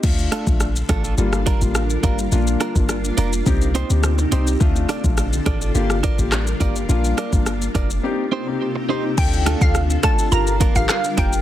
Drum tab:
CC |x---------------|----------------|----------------|----------------|
HH |--x---x---x---x-|--x---x---x---x-|--x---x---x---x-|--x---x---------|
SH |xxxxxxxxxxxxxxxx|xxxxxxxxxxxxxxxx|xxxxxxxxxxxxxxxx|xxxxxxxx--------|
CP |----------------|----------------|------------x---|----------------|
SD |--r-r-r--r--r---|--r-r-------r---|--r-r-r--r--r---|--r-r-r---------|
BD |o--o--o---o---o-|---o----o-------|o--o--o---o---o-|---o--o---------|

CC |x---------------|
HH |--x---x---x---x-|
SH |xxxxxxxxxxxxxxxx|
CP |------------x---|
SD |--r-r-r-----r---|
BD |o--o--o---o---o-|